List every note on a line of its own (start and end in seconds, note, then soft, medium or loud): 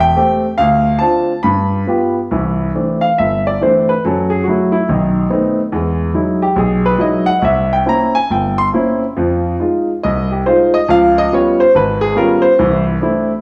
0.00 0.10 E1 medium
0.00 0.54 G5 loud
0.16 0.45 A3 medium
0.16 0.45 C4 soft
0.16 0.45 G4 medium
0.58 0.96 D2 medium
0.58 1.02 F5 medium
0.99 1.30 C4 medium
0.99 1.31 D4 soft
0.99 1.31 F4 medium
0.99 1.40 A5 medium
1.43 1.82 G2 medium
1.43 2.12 B5 medium
1.87 2.17 B3 medium
1.87 2.18 F4 medium
1.87 2.18 G4 medium
2.31 2.69 C2 medium
2.31 2.69 E3 medium
2.75 3.05 E3 soft
2.75 3.05 A3 soft
2.75 3.05 C4 soft
2.75 3.05 D4 medium
3.01 3.17 F5 medium
3.18 3.56 G1 medium
3.18 3.45 E5 medium
3.47 3.61 D5 medium
3.61 3.90 E3 medium
3.61 3.91 A3 soft
3.61 3.91 C4 medium
3.61 3.91 D4 medium
3.61 3.88 C5 medium
3.89 4.03 B4 medium
4.05 4.41 F#2 medium
4.05 4.41 F#3 medium
4.05 4.31 A4 medium
4.30 4.45 G#4 medium
4.44 4.75 F#3 soft
4.44 4.71 F#4 medium
4.49 4.76 A3 soft
4.49 4.71 E4 medium
4.72 4.87 E4 medium
4.89 5.25 B1 medium
4.89 5.25 D#3 medium
4.89 5.29 D#4 medium
5.30 5.59 A3 medium
5.30 5.59 B3 soft
5.30 5.59 C4 medium
5.30 5.59 D#4 medium
5.72 6.09 E2 medium
5.72 6.10 G#3 medium
6.14 6.44 F#3 medium
6.14 6.44 G#3 soft
6.14 6.44 D#4 soft
6.14 6.44 E4 medium
6.42 6.57 G4 medium
6.56 6.93 B1 medium
6.56 6.84 G#4 medium
6.86 7.00 B4 medium
6.98 7.28 F#3 medium
6.98 7.29 G#3 medium
6.98 7.29 D#4 medium
6.98 7.29 E4 medium
6.98 7.27 D#5 medium
7.26 7.42 F#5 loud
7.39 7.79 C2 medium
7.39 7.43 D#5 medium
7.45 7.71 E5 medium
7.73 7.87 G5 medium
7.86 8.15 A#3 soft
7.86 8.15 C4 soft
7.86 8.15 C#4 soft
7.86 8.16 E4 medium
7.86 8.14 A#5 medium
8.15 8.29 G#5 medium
8.30 8.67 G1 medium
8.30 8.58 G5 medium
8.58 8.67 C6 medium
8.73 9.03 A#3 medium
8.73 9.03 C4 medium
8.73 9.03 C#4 soft
8.73 9.03 E4 medium
9.17 9.54 F2 medium
9.17 9.54 F3 medium
9.60 9.90 G#3 soft
9.60 9.89 D#4 soft
9.60 9.90 F4 medium
10.03 10.41 C2 medium
10.03 10.30 D#5 medium
10.32 10.46 G4 medium
10.46 10.76 G#3 medium
10.46 10.76 D#4 medium
10.46 10.76 F4 medium
10.46 10.73 C5 medium
10.74 10.89 D#5 medium
10.88 11.26 C#2 medium
10.88 11.26 F3 medium
10.88 11.16 F5 medium
11.18 11.32 D#5 loud
11.32 11.61 G3 medium
11.32 11.62 B3 medium
11.32 11.61 C#4 soft
11.32 11.62 F4 medium
11.32 11.60 C#5 medium
11.60 11.74 C5 medium
11.75 12.11 G#1 medium
11.75 12.02 B4 medium
12.01 12.16 G#4 loud
12.15 12.45 G3 medium
12.15 12.45 B3 medium
12.15 12.45 C#4 medium
12.15 12.45 F4 medium
12.15 12.43 A#4 medium
12.42 12.82 C5 medium
12.59 12.95 C2 medium
12.59 12.95 E3 medium
13.01 13.30 A3 medium
13.01 13.30 C4 medium
13.01 13.30 D4 medium
13.01 13.30 E4 medium